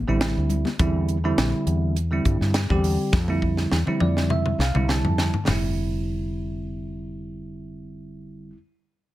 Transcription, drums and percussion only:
0.21 snare, closed hi-hat
0.50 closed hi-hat, low conga
0.65 snare, high conga
0.79 kick, closed hi-hat
1.08 closed hi-hat
1.38 snare, closed hi-hat
1.67 closed hi-hat
1.96 closed hi-hat
2.25 kick, closed hi-hat
2.41 snare
2.54 snare, closed hi-hat
2.70 kick
2.84 open hi-hat
3.13 kick, snare
3.28 high tom
3.42 kick
3.57 snare
3.71 snare
3.87 mid tom
4.00 mid tom
4.17 snare
4.30 mid tom
4.46 mid tom
4.60 snare
4.75 mid tom
4.89 snare
5.05 floor tom
5.18 snare
5.34 floor tom
5.47 snare, floor tom, open hi-hat

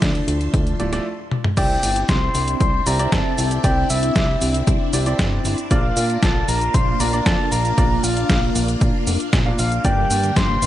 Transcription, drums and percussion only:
0.02 kick, snare, closed hi-hat
0.15 closed hi-hat
0.28 closed hi-hat
0.41 closed hi-hat
0.54 kick, closed hi-hat
0.67 closed hi-hat
0.80 closed hi-hat
0.93 snare, closed hi-hat
1.31 high tom
1.44 mid tom
1.57 kick, closed hi-hat, crash, cabasa
1.83 open hi-hat, cabasa
1.96 closed hi-hat, cabasa
2.09 kick, snare, closed hi-hat, cabasa
2.35 open hi-hat, cabasa
2.48 closed hi-hat, cabasa
2.61 kick, closed hi-hat, cabasa
2.87 open hi-hat, cabasa
2.99 closed hi-hat, cabasa
3.12 kick, snare, closed hi-hat, cabasa
3.38 open hi-hat, cabasa
3.51 closed hi-hat, cabasa
3.64 kick, closed hi-hat, cabasa
3.90 open hi-hat, cabasa
4.03 closed hi-hat, cabasa
4.16 kick, snare, closed hi-hat, cabasa
4.42 open hi-hat, cabasa
4.54 closed hi-hat, cabasa
4.67 kick, closed hi-hat, cabasa
4.93 open hi-hat, cabasa
5.06 closed hi-hat, cabasa
5.19 kick, snare, closed hi-hat, cabasa
5.45 open hi-hat, cabasa
5.58 closed hi-hat, cabasa
5.71 kick, closed hi-hat, cabasa
5.97 open hi-hat, cabasa
6.10 closed hi-hat, cabasa
6.23 kick, snare, closed hi-hat, cabasa
6.49 open hi-hat, cabasa
6.61 closed hi-hat, cabasa
6.74 kick, closed hi-hat, cabasa
7.00 open hi-hat, cabasa
7.13 closed hi-hat, cabasa
7.26 kick, snare, closed hi-hat, cabasa
7.52 open hi-hat, cabasa
7.65 closed hi-hat, cabasa
7.78 kick, closed hi-hat, cabasa
8.04 open hi-hat, cabasa
8.17 closed hi-hat, cabasa
8.29 kick, snare, closed hi-hat, cabasa
8.56 open hi-hat, cabasa
8.68 closed hi-hat, cabasa
8.81 kick, closed hi-hat, cabasa
9.07 open hi-hat, cabasa
9.20 closed hi-hat, cabasa
9.33 kick, snare, closed hi-hat, cabasa
9.59 open hi-hat, cabasa
9.72 closed hi-hat, cabasa
9.85 kick, closed hi-hat, cabasa
10.11 open hi-hat, cabasa
10.24 closed hi-hat, cabasa
10.36 kick, snare, closed hi-hat, cabasa
10.62 open hi-hat, cabasa

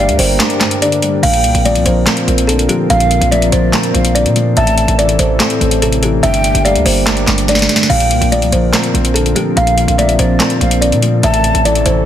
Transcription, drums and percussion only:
0.09 closed hi-hat
0.19 open hi-hat
0.40 snare, clap, closed hi-hat
0.50 closed hi-hat
0.61 snare, clap, closed hi-hat
0.71 closed hi-hat
0.82 closed hi-hat
0.92 closed hi-hat
1.02 closed hi-hat
1.23 closed hi-hat, crash
1.34 closed hi-hat
1.44 closed hi-hat
1.55 closed hi-hat
1.65 closed hi-hat
1.75 closed hi-hat
1.86 closed hi-hat
2.07 snare, clap, closed hi-hat
2.17 closed hi-hat
2.28 closed hi-hat
2.38 closed hi-hat
2.49 closed hi-hat
2.59 closed hi-hat
2.69 closed hi-hat
2.90 closed hi-hat
3.00 closed hi-hat
3.11 closed hi-hat
3.22 closed hi-hat
3.32 closed hi-hat
3.42 closed hi-hat
3.52 closed hi-hat
3.73 snare, clap, closed hi-hat
3.83 closed hi-hat
3.95 closed hi-hat
4.05 closed hi-hat
4.16 closed hi-hat
4.26 closed hi-hat
4.36 closed hi-hat
4.57 closed hi-hat
4.67 closed hi-hat
4.78 closed hi-hat
4.88 closed hi-hat
4.99 closed hi-hat
5.09 closed hi-hat
5.19 closed hi-hat
5.40 snare, clap, closed hi-hat
5.50 closed hi-hat
5.61 closed hi-hat
5.71 closed hi-hat
5.82 closed hi-hat
5.93 closed hi-hat
6.03 closed hi-hat
6.23 closed hi-hat
6.34 closed hi-hat
6.44 closed hi-hat
6.55 closed hi-hat
6.65 closed hi-hat
6.76 closed hi-hat
6.86 open hi-hat
7.07 snare, clap, closed hi-hat
7.17 closed hi-hat
7.27 snare, clap, closed hi-hat
7.38 closed hi-hat
7.48 snare, closed hi-hat
7.55 snare, closed hi-hat
7.62 snare
7.69 snare, closed hi-hat
7.76 snare
7.83 snare
7.90 crash
8.00 closed hi-hat
8.11 closed hi-hat
8.22 closed hi-hat
8.32 closed hi-hat
8.42 closed hi-hat
8.52 closed hi-hat
8.73 snare, clap, closed hi-hat
8.84 closed hi-hat
8.95 closed hi-hat
9.05 closed hi-hat
9.16 closed hi-hat
9.26 closed hi-hat
9.36 closed hi-hat
9.57 closed hi-hat
9.67 closed hi-hat
9.78 closed hi-hat
9.88 closed hi-hat
9.99 closed hi-hat
10.09 closed hi-hat
10.19 closed hi-hat
10.40 snare, clap, closed hi-hat
10.50 closed hi-hat
10.61 closed hi-hat
10.71 closed hi-hat
10.82 closed hi-hat
10.92 closed hi-hat
11.02 closed hi-hat
11.23 closed hi-hat
11.34 closed hi-hat
11.44 closed hi-hat
11.55 closed hi-hat
11.65 closed hi-hat
11.75 closed hi-hat
11.86 closed hi-hat

